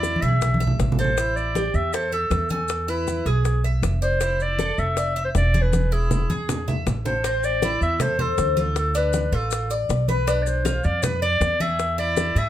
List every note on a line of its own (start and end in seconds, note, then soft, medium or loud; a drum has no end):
0.00 0.17 E2 medium
0.00 0.22 E4 medium
0.00 0.23 D5 loud
0.00 high bongo medium
0.00 high conga medium
0.00 maracas medium
0.16 high conga medium
0.22 0.75 B1 medium
0.22 0.59 G#4 medium
0.22 0.60 E5 loud
0.22 maracas soft
0.28 high conga medium
0.41 high bongo medium
0.41 low conga medium
0.41 maracas medium
0.54 high conga medium
0.60 0.97 E5 medium
0.60 high bongo soft
0.60 maracas soft
0.67 low conga medium
0.79 1.69 A1 medium
0.79 high bongo medium
0.79 low bongo medium
0.79 low conga medium
0.79 maracas medium
0.92 low conga loud
0.99 1.17 A4 medium
0.99 1.38 C5 loud
0.99 high bongo soft
0.99 maracas soft
1.04 low conga medium
1.17 1.55 E4 medium
1.17 high bongo medium
1.17 maracas medium
1.36 1.77 D5 loud
1.36 high conga soft
1.36 maracas soft
1.55 1.93 G4 medium
1.55 high bongo medium
1.55 high conga medium
1.55 maracas medium
1.74 2.27 E2 medium
1.74 1.95 E5 loud
1.74 high conga soft
1.74 maracas soft
1.93 2.12 A4 medium
1.93 2.13 C5 medium
1.93 high bongo medium
1.93 high conga soft
1.93 maracas medium
2.12 2.48 A4 loud
2.12 2.49 E5 medium
2.12 high conga soft
2.12 maracas soft
2.30 3.20 E2 medium
2.30 high bongo medium
2.30 low bongo medium
2.30 high conga medium
2.30 maracas medium
2.49 2.91 A4 medium
2.49 2.87 G#5 medium
2.49 high conga medium
2.49 maracas soft
2.68 high bongo medium
2.68 high conga soft
2.68 maracas medium
2.88 3.25 E4 medium
2.88 3.29 B4 medium
2.88 high bongo soft
2.88 high conga soft
2.88 maracas soft
3.07 high bongo medium
3.07 high conga medium
3.07 maracas medium
3.26 3.79 B1 medium
3.26 3.63 G#4 medium
3.26 3.65 G#4 medium
3.26 high conga soft
3.26 maracas soft
3.45 high bongo medium
3.45 high conga soft
3.45 maracas medium
3.64 4.01 E5 medium
3.64 high bongo soft
3.64 high conga soft
3.64 maracas soft
3.83 4.72 F1 medium
3.83 high bongo medium
3.83 low bongo medium
3.83 high conga medium
3.83 maracas medium
4.02 4.44 C5 loud
4.02 4.21 D5 medium
4.02 high bongo soft
4.02 high conga soft
4.02 maracas soft
4.21 4.58 E4 medium
4.21 high bongo medium
4.21 high conga soft
4.21 maracas medium
4.40 4.80 D5 loud
4.40 high conga soft
4.40 maracas soft
4.59 4.96 A4 medium
4.59 high bongo medium
4.59 high conga medium
4.59 maracas medium
4.78 5.31 F1 medium
4.78 5.23 E5 loud
4.78 high conga soft
4.78 maracas soft
4.97 5.16 D5 medium
4.97 high bongo medium
4.97 high conga soft
4.97 maracas medium
5.16 5.53 E5 medium
5.16 high conga soft
5.16 maracas soft
5.25 5.30 C5 medium
5.35 6.24 E1 medium
5.35 5.63 D5 loud
5.35 high bongo medium
5.35 low bongo medium
5.35 high conga medium
5.35 maracas medium
5.54 5.91 G#4 medium
5.54 high conga medium
5.54 maracas soft
5.62 5.94 B4 medium
5.73 high bongo medium
5.73 high conga loud
5.73 maracas medium
5.92 6.29 E4 medium
5.92 6.11 G#4 medium
5.92 high bongo soft
5.92 maracas soft
6.11 6.84 G#4 medium
6.11 high bongo medium
6.11 low conga loud
6.11 maracas medium
6.30 6.83 E2 medium
6.30 6.67 G#4 medium
6.30 high conga medium
6.30 maracas soft
6.49 high bongo medium
6.49 low conga medium
6.49 maracas medium
6.68 7.05 E5 medium
6.68 high bongo soft
6.68 low conga medium
6.68 maracas soft
6.87 7.76 A1 medium
6.87 high bongo medium
6.87 low bongo medium
6.87 low conga medium
6.87 maracas medium
7.05 7.24 A4 medium
7.05 7.24 C5 medium
7.05 high bongo soft
7.05 low conga medium
7.05 maracas soft
7.24 7.61 C4 medium
7.24 7.46 C5 loud
7.24 high bongo medium
7.24 high conga soft
7.24 maracas medium
7.43 7.82 D5 loud
7.43 high bongo soft
7.43 high conga soft
7.43 maracas medium
7.62 8.00 E4 medium
7.62 high bongo medium
7.62 high conga medium
7.62 maracas medium
7.81 8.34 E2 medium
7.81 8.03 E5 loud
7.81 high conga soft
7.81 maracas soft
8.00 8.19 A4 medium
8.00 8.23 C5 loud
8.00 high bongo medium
8.00 high conga soft
8.00 low conga medium
8.00 maracas medium
8.19 8.58 A4 medium
8.19 8.56 C5 medium
8.19 high bongo soft
8.19 high conga soft
8.19 low conga medium
8.38 9.27 D2 medium
8.38 high bongo medium
8.38 low bongo medium
8.38 high conga medium
8.38 maracas medium
8.57 8.94 F4 medium
8.57 8.76 A4 medium
8.57 high bongo soft
8.57 high conga medium
8.57 maracas soft
8.76 8.95 A4 loud
8.76 high bongo medium
8.76 high conga soft
8.76 maracas medium
8.95 9.32 D4 medium
8.95 9.37 B4 loud
8.95 high bongo soft
8.95 high conga soft
8.95 maracas medium
9.13 high bongo medium
9.13 high conga medium
9.13 maracas medium
9.32 9.85 A1 medium
9.32 9.70 F4 medium
9.32 9.72 A4 medium
9.32 high bongo soft
9.32 high conga soft
9.32 maracas soft
9.51 high bongo medium
9.51 high conga soft
9.51 maracas medium
9.70 10.08 D5 medium
9.70 high conga soft
9.70 maracas medium
9.89 10.78 B1 medium
9.89 high bongo medium
9.89 low bongo medium
9.89 high conga soft
9.89 maracas medium
10.08 10.27 B4 medium
10.08 10.44 B4 medium
10.08 high bongo soft
10.08 high conga medium
10.08 maracas soft
10.27 10.64 D4 medium
10.27 high bongo medium
10.27 high conga soft
10.27 maracas medium
10.43 10.49 D5 medium
10.43 maracas medium
10.47 10.66 C5 medium
10.47 high bongo soft
10.47 high conga soft
10.65 11.02 F4 medium
10.65 10.86 C5 medium
10.65 high bongo medium
10.65 high conga medium
10.65 maracas medium
10.84 11.38 F2 medium
10.84 11.05 D5 loud
10.84 high conga soft
10.84 maracas soft
11.03 11.22 B4 medium
11.03 high bongo medium
11.03 high conga soft
11.03 low conga medium
11.03 maracas medium
11.22 11.59 D5 medium
11.22 11.63 D5 loud
11.22 high bongo soft
11.22 high conga soft
11.41 12.30 E2 medium
11.41 high bongo medium
11.41 low bongo medium
11.41 high conga medium
11.41 maracas medium
11.60 11.97 G#4 medium
11.60 11.99 E5 loud
11.60 high bongo soft
11.60 high conga medium
11.60 maracas soft
11.79 high bongo medium
11.79 maracas medium
11.98 12.35 E4 medium
11.98 12.40 D5 medium
11.98 high bongo soft
11.98 high conga soft
12.17 high bongo medium
12.17 high conga medium
12.17 maracas medium
12.35 12.49 G#2 medium
12.35 12.49 G#4 medium
12.35 12.49 E5 loud
12.35 high bongo soft
12.35 high conga soft
12.35 maracas soft